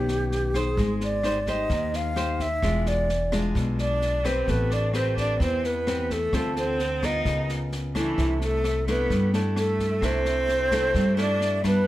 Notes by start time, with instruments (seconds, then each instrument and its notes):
Already playing: upright bass B1, nylon-string guitar D#3 B3 C#4 G4, alto flute G4
0.08 snare
0.32 snare
0.54 nylon-string guitar D#4 C5, alto flute G#4, kick, cross-stick, snare
0.77 upright bass G#1, nylon-string guitar G#3, kick, snare
1.00 alto flute D5, snare
1.23 nylon-string guitar D#4 G4 C5, cross-stick, snare
1.46 nylon-string guitar D#4 G4 C5, alto flute D#5, kick, snare
1.70 upright bass D#2, nylon-string guitar D#3, kick, snare
1.93 alto flute F5, snare
2.16 nylon-string guitar D#4 G4 C5, cross-stick, snare
2.39 alto flute E5, kick, snare
2.62 upright bass E1, nylon-string guitar E3 G#3 D4 F4, kick, cross-stick, snare
2.86 alto flute D5, snare
3.09 snare
3.32 nylon-string guitar G#3 D4 F4, kick, cross-stick, snare
3.55 upright bass B1, nylon-string guitar B2, kick, snare
3.78 cello D4, alto flute D5, snare
4.02 snare
4.24 cello C4, nylon-string guitar C4 G4 B4, alto flute C5, kick, cross-stick, snare
4.47 upright bass A1, nylon-string guitar A3, cello B3, alto flute B4, kick, snare
4.70 cello D4, alto flute D5, snare
4.94 cello C4, nylon-string guitar C4 G4 B4, alto flute C5, cross-stick, snare
5.17 cello D4, alto flute D5, kick, snare
5.40 upright bass E2, nylon-string guitar E3, cello C4, alto flute C5, kick, snare
5.63 cello B3, alto flute B4, snare
5.87 nylon-string guitar C4 G4 B4, cross-stick, snare
6.10 cello A3, alto flute A4, kick, snare
6.33 upright bass D2, nylon-string guitar D3 C4 F4 A4, kick, cross-stick, snare
6.56 cello C4, alto flute C5, snare
6.79 snare
7.02 nylon-string guitar B3 F4 A#4, cello D#4, alto flute D#5, kick, cross-stick, snare
7.25 upright bass C#2, nylon-string guitar C#3, kick, snare
7.49 snare
7.72 snare
7.95 cello E3, nylon-string guitar A3 D4 E4, alto flute E4, kick, cross-stick, snare
8.18 upright bass C2, nylon-string guitar C3, kick, snare
8.41 cello A3, alto flute A4, snare
8.64 cross-stick, snare
8.87 nylon-string guitar A3 D4 E4, cello B3, alto flute B4, kick, snare
9.10 upright bass G2, nylon-string guitar G3, kick, snare
9.33 nylon-string guitar A3 D4 E4, snare
9.56 cello A3, alto flute A4, cross-stick, snare
9.79 kick, snare
10.01 upright bass C2, nylon-string guitar C3 A3 D4 E4, cello C4, kick, cross-stick, snare
10.05 alto flute C5
10.25 snare
10.48 snare
10.71 nylon-string guitar A3 D4 E4, kick, cross-stick, snare
10.95 upright bass G2, nylon-string guitar G3, kick, snare
11.17 nylon-string guitar A3 D4 E4, cello D4, snare
11.21 alto flute D5
11.41 snare
11.64 nylon-string guitar G3 D4, cello B3, alto flute B4, kick, cross-stick, snare